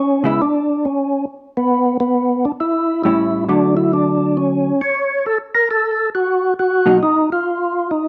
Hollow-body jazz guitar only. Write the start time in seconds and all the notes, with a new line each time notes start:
0.24 C#3 G#3 B3 E4
3.05 A2 G3 C#4 E4
3.48 D3 F#3 A3
6.86 B2 F#3 A#3 D#4